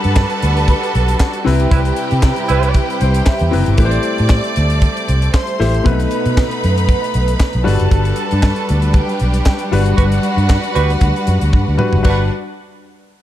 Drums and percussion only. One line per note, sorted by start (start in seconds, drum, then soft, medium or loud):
0.04 closed hi-hat soft
0.16 kick loud
0.16 snare loud
0.16 clap loud
0.30 closed hi-hat soft
0.42 closed hi-hat medium
0.57 closed hi-hat soft
0.68 kick loud
0.68 closed hi-hat medium
0.83 closed hi-hat soft
0.95 closed hi-hat medium
1.08 closed hi-hat medium
1.20 kick loud
1.20 snare loud
1.20 clap medium
1.33 closed hi-hat soft
1.47 snare soft
1.47 open hi-hat medium
1.60 closed hi-hat medium
1.71 kick loud
1.71 closed hi-hat medium
1.85 closed hi-hat soft
1.96 closed hi-hat medium
2.11 closed hi-hat soft
2.23 kick loud
2.23 snare loud
2.23 clap loud
2.36 closed hi-hat soft
2.49 closed hi-hat medium
2.63 closed hi-hat soft
2.74 kick loud
2.74 closed hi-hat medium
2.90 closed hi-hat soft
3.01 closed hi-hat medium
3.14 closed hi-hat medium
3.26 kick loud
3.26 snare loud
3.26 clap medium
3.39 closed hi-hat soft
3.53 open hi-hat medium
3.66 closed hi-hat soft
3.78 kick loud
3.78 closed hi-hat medium
3.91 closed hi-hat soft
4.03 closed hi-hat medium
4.18 closed hi-hat soft
4.29 kick loud
4.29 snare loud
4.29 clap medium
4.44 closed hi-hat soft
4.56 closed hi-hat medium
4.70 closed hi-hat medium
4.82 kick loud
4.82 closed hi-hat medium
4.97 closed hi-hat soft
5.08 closed hi-hat medium
5.22 closed hi-hat medium
5.34 kick loud
5.34 snare loud
5.34 clap medium
5.47 closed hi-hat soft
5.61 snare soft
5.61 open hi-hat medium
5.74 closed hi-hat soft
5.86 kick loud
5.86 closed hi-hat medium
6.00 closed hi-hat soft
6.11 closed hi-hat medium
6.26 closed hi-hat soft
6.37 kick loud
6.37 snare loud
6.37 clap medium
6.51 closed hi-hat soft
6.64 closed hi-hat medium
6.77 closed hi-hat soft
6.89 kick loud
6.89 closed hi-hat medium
7.04 closed hi-hat soft
7.14 closed hi-hat medium
7.28 closed hi-hat medium
7.40 kick loud
7.40 snare loud
7.40 clap medium
7.53 closed hi-hat soft
7.67 snare soft
7.67 open hi-hat medium
7.80 closed hi-hat soft
7.91 kick loud
7.91 closed hi-hat medium
8.05 closed hi-hat soft
8.16 closed hi-hat medium
8.31 closed hi-hat soft
8.43 kick loud
8.43 snare loud
8.43 clap medium
8.56 closed hi-hat soft
8.69 closed hi-hat medium
8.82 closed hi-hat soft
8.94 kick loud
8.94 closed hi-hat medium
9.09 closed hi-hat soft
9.19 closed hi-hat medium
9.34 closed hi-hat medium
9.46 kick loud
9.46 snare loud
9.46 clap loud
9.59 closed hi-hat soft
9.73 open hi-hat medium
9.86 closed hi-hat medium
9.98 kick loud
9.98 closed hi-hat medium
10.12 closed hi-hat medium
10.23 closed hi-hat medium
10.38 closed hi-hat soft
10.50 kick loud
10.50 snare loud
10.50 clap loud
10.64 closed hi-hat soft
10.76 closed hi-hat medium
10.90 closed hi-hat soft
11.01 kick loud
11.01 closed hi-hat medium
11.16 closed hi-hat soft
11.27 closed hi-hat medium
11.41 closed hi-hat medium
11.53 kick loud
11.53 high tom medium
11.79 mid tom medium
11.93 floor tom medium
12.04 kick loud
12.04 crash medium